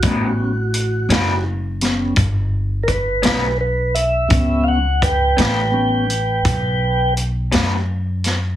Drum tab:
HH |x-xx-xx-xx-x|x-xx-xx-xx-x|
SD |---o-o---o--|---o-----o-o|
BD |o-----o-o---|o-o---o-----|